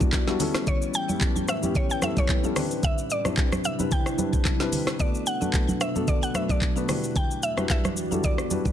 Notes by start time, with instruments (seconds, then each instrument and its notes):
Already playing: ambient pad E2 E3 G3 F#4 D5, grand piano G3 B3 D4 E4 F#4, synth pluck D5, downlifter
0.00 kick, high conga, shaker
0.13 kick, snare, clap, shaker
0.27 grand piano G3 B3 D4 E4 F#4, snare, high conga, shaker
0.39 ambient pad A2 E3 C#4 G4 B4, grand piano G3 B3 C#4 E4 A4, open hi-hat, low conga, shaker
0.55 cross-stick, snare, shaker
0.67 synth pluck C#5, kick, low conga, shaker
0.82 shaker
0.94 synth pluck G5, shaker
1.08 grand piano G3 B3 C#4 E4 G4, high conga, shaker
1.21 kick, clap, shaker
1.36 high conga, shaker
1.48 synth pluck E5, cross-stick, shaker
1.62 grand piano G3 B3 C#4 E4 G4, high conga, shaker
1.74 synth pluck C#5, kick, low conga, shaker
1.90 synth pluck G5, shaker
2.02 grand piano G3 B3 C#4 E4 A4, synth pluck E5, cross-stick, high conga, shaker
2.17 synth pluck C#5, kick, high conga, shaker
2.29 kick, clap, shaker
2.43 grand piano G3 B3 C#4 E4 A4, high conga, shaker
2.56 ambient pad C3 G3 D4 E4, grand piano G3 C4 D4 E4 B4, cross-stick, open hi-hat, low conga, shaker
2.71 shaker
2.83 synth pluck E5, kick, low conga, shaker
2.98 shaker
3.10 synth pluck D5, shaker
3.24 grand piano G3 C4 D4 E4 D5, cross-stick, high conga, shaker
3.37 kick, clap, shaker
3.52 cross-stick, high conga, shaker
3.64 synth pluck E5, shaker
3.79 grand piano G3 C4 D4 E4 B4, high conga, shaker
3.91 synth pluck G5, kick, low conga, shaker
4.06 cross-stick, shaker
4.18 grand piano G3 C4 D4 E4 B4, high conga, shaker
4.33 kick, high conga, shaker
4.45 kick, snare, clap, shaker
4.60 grand piano G3 C4 D4 E4 B4, snare, high conga, shaker
4.72 open hi-hat, low conga, shaker
4.87 cross-stick, snare, shaker
4.99 ambient pad B2 F#3 A3, grand piano A3 B3 D4 F#4 B4, synth pluck D5, kick, low conga, shaker
5.15 shaker
5.26 synth pluck F#5, shaker
5.41 grand piano A3 B3 D4 F#4 B4, high conga, shaker
5.53 kick, clap, shaker
5.69 high conga, shaker
5.81 synth pluck E5, cross-stick, shaker
5.95 grand piano A3 B3 D4 F#4 A4, high conga, shaker
6.07 synth pluck D5, kick, low conga, shaker
6.23 synth pluck F#5, shaker
6.34 grand piano A3 B3 D4 F#4 B4, synth pluck E5, cross-stick, high conga, shaker
6.49 synth pluck D5, kick, high conga, shaker
6.61 kick, clap, shaker
6.76 grand piano A3 B3 D4 F#4 B4, high conga, shaker
6.88 ambient pad E2 E3 G3 F#4 D5, grand piano G3 D4 E4 F#4 B4, cross-stick, open hi-hat, low conga, shaker
7.04 shaker
7.16 synth pluck G5, kick, low conga, shaker
7.31 shaker
7.43 synth pluck E5, shaker
7.57 grand piano G3 D4 E4 F#4 B4, cross-stick, high conga, shaker
7.70 synth pluck E5, kick, clap, shaker
7.85 cross-stick, high conga, shaker
7.97 shaker
8.11 grand piano G3 D4 E4 F#4 A4, high conga, shaker
8.23 synth pluck D5, kick, low conga, shaker
8.38 cross-stick, shaker
8.50 grand piano G3 D4 E4 F#4 B4, high conga, shaker
8.65 kick, high conga, shaker